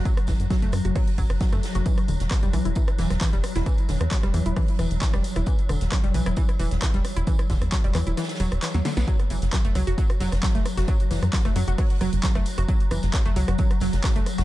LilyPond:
<<
  \new Staff \with { instrumentName = "Synth arpeggio sound" } { \clef bass \time 4/4 \key e \dorian \tempo 4 = 133 fis16 r16 e16 r16 fis16 a16 r16 fis'16 fis16 r16 fis16 r16 fis16 a16 r16 fis'16 | e16 r16 d16 r16 fis16 g16 e16 e'16 e16 r16 e16 r16 e16 g16 r16 e'16 | e16 r16 d16 r16 fis16 g16 e16 e'16 e16 r16 e16 r16 e16 g16 r16 e'16 | e16 r16 d16 r16 fis16 g16 e16 e'16 e16 r16 e16 r16 e16 g16 r16 e'16 |
e16 r16 d16 r16 fis16 g16 e16 e'16 e16 r16 fis16 r16 e16 fis16 d16 b16 | fis16 r16 e16 r16 fis16 a16 fis16 fis'16 fis16 r16 fis16 r16 fis16 a16 r16 fis'16 | fis16 r16 e16 r16 fis16 a16 fis16 fis'16 fis16 r16 fis16 r16 fis16 a16 r16 fis'16 | fis16 r16 e16 r16 fis16 a16 fis16 fis'16 fis16 r16 fis16 r16 fis16 a16 r16 fis'16 | }
  \new Staff \with { instrumentName = "Synth drone" } { \clef bass \time 4/4 \key e \dorian fis1~ | fis1~ | fis1~ | fis1~ |
fis1 | fis1~ | fis1~ | fis1 | }
  \new Staff \with { instrumentName = "Analog synth bass" } { \clef bass \time 4/4 \key e \dorian r8 fis,,16 fis,16 r16 fis,,16 fis,16 fis,,16 r8 fis,,16 fis,,16 r16 fis,16 r16 fis,,16 | r8 e,,16 e,,16 r16 e,,16 b,,16 e,,16 r8 e,,16 e,,16 r16 e,,16 r16 e,,16 | r8 e,,16 e,16 r16 e,,16 e,16 e,,16 r8 e,,16 e,,16 r16 e,,16 r16 e,,16 | r8 e,,16 e,,16 r16 e,,16 b,,16 e,,16 r8 e,,16 e,,16 r16 e,,16 r16 e,,16 |
r8 e,,16 e,16 r16 e,,16 e,16 e,,16 r8 e,,16 e,,16 r16 e,16 r16 b,,16 | r8 fis,,16 fis,,16 r16 fis,,16 cis,16 fis,,16 r8 fis,,16 fis,,16 r16 fis,,16 r16 fis,,16 | r8 fis,,16 fis,16 r16 fis,,16 fis,16 fis,,16 r8 fis,,16 fis,,16 r16 fis,,16 r16 fis,,16 | r8 fis,,16 fis,,16 r16 fis,,16 cis,16 fis,,16 r8 fis,,16 fis,,16 r16 fis,,16 r16 fis,,16 | }
  \new DrumStaff \with { instrumentName = "Drums" } \drummode { \time 4/4 <hh bd tamb>16 <hh ss>16 <hho bd sn tamb>16 hh16 <hh bd sn tamb>16 hh16 <hho ss tamb>16 hh16 <hh hho bd ss>16 hh16 <hho bd tamb>16 <hh ss>16 <hh bd sn tamb>16 <hh ss>16 <hho sn tamb>16 hh16 | <hh bd tamb>16 <hh ss>16 <hho tamb>16 <hh sn>16 <hc hh bd ss sn tamb>16 hh16 <hho ss tamb>16 hh16 <hh bd tamb>16 <hh ss>16 <hho sn tamb>16 <hh ss sn>16 <hc hh bd sn tamb>16 hh16 <hho ss tamb>16 <hh sn>16 | <hh bd ss tamb>16 hh16 <hho sn tamb>16 <hh ss>16 <hc hh bd sn tamb>16 <hh ss>16 <hho tamb>16 hh16 <hh hho bd ss>16 hh16 <hho ss tamb>16 hh16 <hc hh bd sn tamb>16 <hh ss>16 <hho tamb>16 <hh ss>16 | <hh bd tamb>16 hh16 <hho ss tamb>16 <hh sn>16 <hc hh bd ss sn tamb>16 hh16 <hho tamb>16 <hh ss>16 <hh bd tamb>16 <hh ss>16 <hho tamb>16 <hh sn>16 <hc hh bd ss sn tamb>16 hh16 <hho ss tamb>16 hh16 |
<hh bd tamb>16 <hh ss>16 <hho bd sn tamb>16 <hh ss>16 <hc hh bd sn tamb>16 hh16 <hc hho ss tamb>16 hh16 <hh ss sn tamb>32 <sn tamb>32 <hh sn tamb>32 <sn tamb>32 <hho tamb>16 <hh ss>16 <hc hh sn tamb>16 <hh sn>16 <hho sn tamb>16 <hh sn tamb>16 | <hh bd tamb>16 <hh ss>16 <hho tamb>16 <hh sn>16 <hc hh bd ss sn tamb>16 hh16 <hho ss tamb>16 hh16 <hh bd tamb>16 <hh ss>16 <hho sn tamb>16 <hh ss sn>16 <hc hh bd sn tamb>16 hh16 <hho ss tamb>16 <hh sn>16 | <hh bd ss tamb>16 hh16 <hho sn tamb>16 <hh ss>16 <hc hh bd sn tamb>16 <hh ss>16 <hho tamb>16 hh16 <hh hho bd ss>16 hh16 <hho ss tamb>16 hh16 <hc hh bd sn tamb>16 <hh ss>16 <hho tamb>16 <hh ss>16 | <hh bd tamb>16 hh16 <hho ss tamb>16 <hh sn>16 <hc hh bd ss sn tamb>16 hh16 <hho tamb>16 <hh ss>16 <hh bd tamb>16 <hh ss>16 <hho sn tamb>16 <hh sn>16 <hc hh bd ss sn tamb>16 hh16 <hho ss tamb>16 <hh sn>16 | }
>>